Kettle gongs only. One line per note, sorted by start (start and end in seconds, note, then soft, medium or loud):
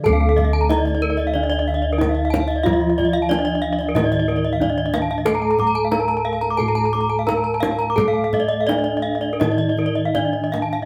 0.00 0.65 D3 medium
0.00 1.96 A4 medium
0.09 3.94 D2 medium
0.69 0.77 D#4 soft
1.99 2.07 D#4 soft
2.64 4.56 F4 medium
3.30 3.38 D#4 soft
3.95 5.88 A2 medium
4.61 4.69 D#4 soft
5.26 7.23 A4 medium
5.92 6.00 D#4 soft
6.59 8.65 A2 medium
7.27 7.35 D#4 medium
7.96 10.12 A4 medium
8.69 8.77 D#4 soft
9.41 10.85 A2 medium
10.15 10.23 D#4 soft